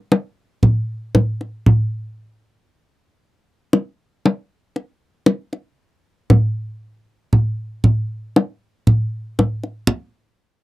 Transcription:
0.12 kendang high
0.63 kendang slap, kendang low
1.15 kendang slap, kendang high, kendang low
1.41 kendang slap
1.66 kendang low
3.73 kendang high
4.26 kendang high
4.76 kendang slap
5.26 kendang slap, kendang high
5.53 kendang slap
6.30 kendang high, kendang low
7.33 kendang low
7.84 kendang low
8.36 kendang high
8.87 kendang slap, kendang low
9.39 kendang slap, kendang high, kendang low
9.64 kendang slap
9.87 kendang low

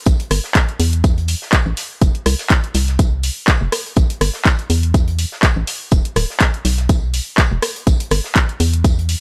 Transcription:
0.06 A1, kick, closed hi-hat, tambourine
0.20 closed hi-hat
0.31 G1, cross-stick, open hi-hat, tambourine
0.44 snare
0.55 kick, snare, clap, closed hi-hat, tambourine
0.69 closed hi-hat
0.80 E2, open hi-hat, tambourine
0.93 closed hi-hat
1.04 kick, closed hi-hat, tambourine
1.18 closed hi-hat
1.28 open hi-hat, tambourine
1.42 snare
1.52 kick, snare, clap, closed hi-hat, tambourine
1.66 A1
1.77 snare, open hi-hat, tambourine
2.02 F1, kick, closed hi-hat, tambourine
2.15 closed hi-hat
2.26 C2, cross-stick, open hi-hat, tambourine
2.39 snare, open hi-hat
2.50 kick, snare, clap, closed hi-hat, tambourine
2.64 closed hi-hat
2.74 C2, snare, open hi-hat, tambourine
2.88 snare, closed hi-hat
2.99 kick, closed hi-hat, tambourine
3.23 open hi-hat, tambourine
3.48 kick, snare, clap, closed hi-hat, tambourine
3.61 F1
3.72 cross-stick, open hi-hat, tambourine
3.86 closed hi-hat
3.96 A1, kick, closed hi-hat, tambourine
4.10 closed hi-hat
4.21 G1, cross-stick, open hi-hat, tambourine
4.34 snare
4.45 kick, snare, clap, closed hi-hat, tambourine
4.59 closed hi-hat
4.70 E2, open hi-hat, tambourine
4.83 closed hi-hat
4.94 kick, closed hi-hat, tambourine
5.07 closed hi-hat
5.19 open hi-hat, tambourine
5.32 snare
5.43 kick, snare, clap, closed hi-hat, tambourine
5.56 A1
5.67 snare, open hi-hat, tambourine
5.91 E1, kick, closed hi-hat, tambourine
6.05 closed hi-hat
6.16 D1, cross-stick, open hi-hat, tambourine
6.30 snare
6.40 kick, snare, clap, closed hi-hat, tambourine
6.54 closed hi-hat
6.65 B1, snare, open hi-hat, tambourine
6.78 snare, closed hi-hat
6.89 kick, closed hi-hat, tambourine
7.14 open hi-hat, tambourine
7.38 kick, snare, clap, closed hi-hat, tambourine
7.52 E1
7.62 cross-stick, open hi-hat, tambourine
7.76 closed hi-hat
7.87 A1, kick, closed hi-hat, tambourine
8.00 closed hi-hat
8.11 G1, cross-stick, open hi-hat, tambourine
8.24 snare
8.36 kick, snare, clap, closed hi-hat, tambourine
8.49 closed hi-hat
8.60 E2, open hi-hat, tambourine
8.73 closed hi-hat
8.84 kick, closed hi-hat, tambourine
8.99 closed hi-hat
9.09 open hi-hat, tambourine

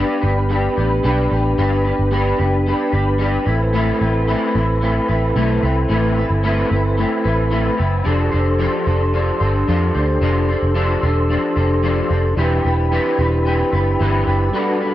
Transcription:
Already playing: G3 B3 D4 G4 B4
0.21 G1 D4 G4 B4
0.49 G3 D4 G4 B4
0.76 A1 D4 G4 B4
1.03 B1 G3 D4 G4 B4
1.31 A1 D4 G4 B4
1.58 G1 G3 D4 G4 B4
1.84 D4 G4 B4
1.99 G1
2.11 G3 D4 G4 B4
2.38 F#1 D4 G4 B4
2.66 G3 D4 G4 B4
2.92 G1 D4 G4 B4
3.19 G3 D4 G4 B4
3.46 A1 C4 E4 A4 B4
3.51 B4
3.73 A3 C4 E4 B4
4.00 A1 C4 E4 B4
4.27 A3 C4 E4 B4
4.55 A1 C4 E4 B4
4.81 A3 C4 E4 B4
5.08 A1 C4 E4 B4
5.36 B1 A3 C4 E4 B4
5.62 C2 C4 E4 B4
5.89 A1 A3 C4 E4 B4
6.17 C4 E4 B4
6.30 G1
6.43 A3 C4 E4 B4
6.69 G1 C4 E4 B4
6.97 A3 C4 E4 B4
7.24 A1 C4 E4 B4
7.51 A3 C4 E4 B4
7.77 F#1 C4 E4 B4
8.03 F1 F3 D4 G4 A4 C5
8.09 C5
8.32 F1 D4 A4 C5
8.59 F3 D4 A4 C5
8.86 F1 D4 A4 C5
9.13 F3 D4 A4 C5
9.40 G1 D4 A4 C5
9.67 F2 F3 D4 A4 C5
9.94 D2 D4 A4 C5
10.21 F1 F3 D4 A4 C5
10.48 D4 A4 C5
10.63 F1
10.75 F3 D4 A4 C5
11.02 E1 D4 A4 C5
11.29 F3 D4 A4 C5
11.56 F1 D4 A4 C5
11.82 F3 D4 A4 C5
12.10 F1 D4 A4 C5
12.36 E1 E3 C4 D4 E4 G4 B4
12.40 B4
12.64 E1 C4 G4 B4
12.92 E3 C4 G4 B4
13.19 E1 C4 G4 B4
13.45 E3 C4 G4 B4
13.73 F#1 C4 G4 B4
14.00 G1 E3 C4 G4 B4
14.27 F#1 C4 G4 B4
14.51 G3 D4 F#4 A4
14.55 F#4 B4
14.81 D4 F#4 B4

